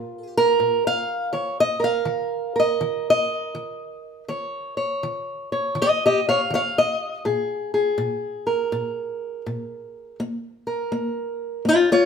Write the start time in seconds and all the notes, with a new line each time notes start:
Already playing: A#2 F4 A#4
0.37 A#4
0.60 A#2
0.87 F5
1.33 D#3 C#5
1.60 D#5
1.80 A#4
1.84 F5
2.05 D#3
2.56 A#4 D#5
2.81 D#3
3.10 D#5
3.55 D#3
4.28 D#3 C#5
4.77 C#5
5.03 D#3
5.52 C#5
5.75 D#3
5.82 G4 D#5
6.06 G4 D#5
6.29 C#5 F5
6.50 D#3 C#5
6.55 F5
6.78 D#5
7.25 A#2 G#4
7.74 G#4
7.98 A#2
8.47 A#4
8.72 A#2
9.46 A#2
10.20 A#3
10.67 A#4
10.92 A#3
11.65 A#3 F4
11.70 C#5
11.92 F4 C#5